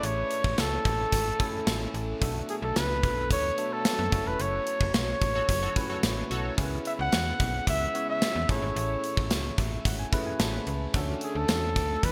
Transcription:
Already playing: distorted electric guitar A2 E3 A3, tine electric piano A3 C#4 E4 G#4 A4
0.03 fm bass A1, flugelhorn C#5, closed hi-hat
0.31 closed hi-hat
0.44 fm bass A1, kick
0.58 fm bass C#2, flugelhorn A4, snare, closed hi-hat, tambourine
0.85 fm bass A1, kick, closed hi-hat
1.12 fm bass G#1, distorted electric guitar A2 E3 A3, kick, closed hi-hat
1.39 tine electric piano A3 C#4 E4 A4 G#5, kick, closed hi-hat
1.66 fm bass A1, distorted electric guitar A2 E3 A3, snare, closed hi-hat, tambourine
1.94 fm bass A1, closed hi-hat
2.20 fm bass B1, distorted electric guitar B2 F#3, tine electric piano A3 B3 D4 F#4 A4, kick, closed hi-hat
2.25 distorted electric guitar B3
2.49 flugelhorn G#4, closed hi-hat
2.62 fm bass B1, flugelhorn A4
2.76 fm bass C#2, flugelhorn B4, snare, closed hi-hat, tambourine
3.03 fm bass B1, kick, closed hi-hat
3.30 fm bass D2, distorted electric guitar B2 F#3 B3, flugelhorn C#5, kick, closed hi-hat
3.57 tine electric piano A3 B3 D4 F#4 A4, closed hi-hat
3.73 flugelhorn A4
3.84 distorted electric guitar B2 F#3 B3, snare, closed hi-hat, tambourine
3.99 fm bass F#2
4.11 fm bass F#1, distorted electric guitar C#3 F#3, tine electric piano A3 C#4 E4 F#4 A4, kick, closed hi-hat
4.16 distorted electric guitar F#2
4.26 fm bass E1, flugelhorn B4
4.40 fm bass F#1, flugelhorn C#5, closed hi-hat
4.67 closed hi-hat
4.81 fm bass F#1, kick
4.94 fm bass B1, flugelhorn C#5, snare, closed hi-hat, tambourine
5.22 fm bass A1, kick, closed hi-hat
5.35 analog polysynth F#4 A4 C#5
5.48 fm bass F#1, distorted electric guitar F#2 C#3 F#3, kick, closed hi-hat
5.62 analog polysynth F#4 A4 C#5
5.75 tine electric piano A3 C#4 E4 F#4 B4, kick, closed hi-hat
5.90 analog polysynth F#4 A4 C#5
6.02 fm bass A1, distorted electric guitar F#2 C#3 F#3, snare, closed hi-hat, tambourine
6.31 fm bass B1, analog polysynth F#4 A4 C#5, closed hi-hat
6.56 fm bass C#2, distorted electric guitar C#3 G#3, tine electric piano B3 C#4 E4 G#4 A#4, kick, closed hi-hat
6.61 distorted electric guitar C#4
6.65 tine electric piano B4
6.85 flugelhorn E5, closed hi-hat
6.99 fm bass C#2, flugelhorn F#5
7.12 fm bass E2, snare, closed hi-hat, tambourine
7.40 fm bass B1, kick, closed hi-hat
7.66 fm bass C#2, distorted electric guitar C#3 G#3 C#4, flugelhorn E5, kick, closed hi-hat
7.94 tine electric piano B3 C#4 E4 G#4 C#5, closed hi-hat
8.10 flugelhorn E5
8.21 distorted electric guitar C#3 G#3 C#4, snare, closed hi-hat, tambourine
8.35 fm bass E2
8.48 fm bass A1, distorted electric guitar E3 A3, tine electric piano A3 C#4 E4 G#4 A4, flugelhorn C#5, kick, closed hi-hat
8.52 distorted electric guitar A2
8.62 fm bass G#1
8.76 fm bass A1, closed hi-hat
9.04 closed hi-hat
9.17 fm bass A1, kick
9.31 fm bass C#2, snare, closed hi-hat, tambourine
9.57 fm bass A1, distorted electric guitar E3 A3, tine electric piano E5, kick, closed hi-hat
9.84 fm bass G#1, distorted electric guitar A2 E3 A3, tine electric piano F#5, kick, closed hi-hat
9.99 tine electric piano G#5
10.12 tine electric piano A3 C#4 E4 G#4 B4, kick, closed hi-hat
10.26 tine electric piano G#5
10.39 fm bass A1, distorted electric guitar A2 E3 A3, tine electric piano A5, snare, closed hi-hat, tambourine
10.53 tine electric piano B5
10.67 fm bass C#2, closed hi-hat
10.93 fm bass D2, distorted electric guitar D3 A3, tine electric piano A3 C#4 D4 F#4 A4, kick, closed hi-hat
10.98 distorted electric guitar D4
11.21 flugelhorn G#4, closed hi-hat
11.35 fm bass D2, flugelhorn A4
11.48 fm bass E2, snare, closed hi-hat, tambourine
11.76 fm bass D2, kick, closed hi-hat
12.02 fm bass E2, distorted electric guitar D3 A3 D4, flugelhorn B4, kick, closed hi-hat

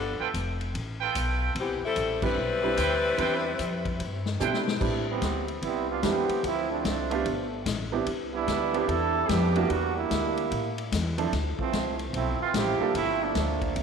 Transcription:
Already playing: upright bass G1, saxophone section F3 B3 D4 A4
0.19 trumpet section F4 A4 B4 G5, muted upright bass stroke
0.34 upright bass F1, kick, hi-hat pedal, ride
0.61 ride
0.74 upright bass A1, kick, ride
1.00 trumpet section F4 A4 B4 G5
1.15 upright bass B1, kick, hi-hat pedal, ride
1.55 upright bass C2, kick, ride
1.60 saxophone section E3 B3 C4 G4
1.81 saxophone section A4, muted upright bass stroke
1.86 saxophone section G3 C4 E4
1.96 upright bass A1, kick, hi-hat pedal, ride
2.22 grand piano G3 C4 D4 E4 B4, saxophone section G3 C4 E4 B4, kick, crash
2.36 upright bass B1
2.63 grand piano G3 C4 D4 E4 B4
2.77 upright bass D2, trumpet section E4 B4 C5 G5, kick, hi-hat pedal, ride
3.17 upright bass E2, grand piano G3 C4 D4 E4 B4, trumpet section E4 B4 C5 G5, kick, ride
3.59 upright bass F2, kick, hi-hat pedal, ride
3.85 kick, ride
4.00 upright bass G2, kick, ride
4.26 snare
4.40 upright bass B2, grand piano G3 C4 D4 E4 A4, trumpet section E4 B4 C5 G5, hi-hat pedal
4.54 snare
4.68 snare
4.80 upright bass A2, grand piano G3 C4 D4 E4 B4, kick, crash
5.09 trombone section E3 G3 B3 C4
5.21 upright bass D2, kick, snare, hi-hat pedal, ride
5.48 ride
5.62 upright bass C2, trombone section G3 B3 C4 E4, kick, ride
5.89 trombone section G3 B3 D4 F4
6.02 upright bass E2, trombone section E3 B3 C4 G4, grand piano G3 C4 D4 E4 B4, kick, snare, hi-hat pedal, ride
6.29 muted upright bass stroke, ride
6.43 upright bass D2, trombone section F3 A3 C4 E4, kick, ride
6.69 trombone section F3 A3 C4 D4
6.84 upright bass C2, kick, snare, hi-hat pedal, ride
7.10 grand piano A3 B3 D4 F4 G4, ride
7.25 upright bass G1, kick, ride
7.66 upright bass A1, kick, snare, hi-hat pedal, ride
7.92 grand piano B3 C4 D4 E4 G4
8.06 upright bass C2, kick, ride
8.33 trombone section G3 B3 D4 E4
8.47 upright bass D2, kick, snare, hi-hat pedal, ride
8.73 grand piano B3 C4 D4 E4 G4, ride
8.87 upright bass E2, trombone section G3 D4 E4 A4, kick, ride
9.28 upright bass F2, trombone section E3 B3 D4 G4, kick, snare, hi-hat pedal, ride
9.55 grand piano G3 A#3 D4 E4 F#4, ride
9.68 upright bass E2, trombone section D3 G3 A#3 F#4, kick, ride
9.95 trombone section G3 A#3 D4 E4
10.11 upright bass D2, kick, snare, hi-hat pedal, ride
10.37 ride
10.51 upright bass A2, kick, ride
10.78 ride
10.92 upright bass E2, kick, snare, hi-hat pedal, ride
11.18 grand piano F3 C4 D4 E4 A4, ride
11.32 upright bass D2, kick, snare, ride
11.59 trombone section E3 F3 A3 C4, muted upright bass stroke, kick
11.73 upright bass C2, kick, snare, hi-hat pedal, ride
11.99 ride
12.13 upright bass B1, trombone section F3 A3 C4 E4, kick, ride
12.40 trombone section E3 A3 C4 F4, muted upright bass stroke
12.54 upright bass A1, trombone section F3 C4 E4 G4, kick, snare, hi-hat pedal, ride
12.79 grand piano G3 A#3 D4 F4 A4, muted upright bass stroke
12.94 upright bass G1, trombone section F3 A3 C4 E4, kick, ride
13.23 trombone section F3 A3 A#3 D4
13.35 upright bass D2, kick, snare, hi-hat pedal, ride
13.61 kick, ride
13.76 upright bass C2, kick, ride

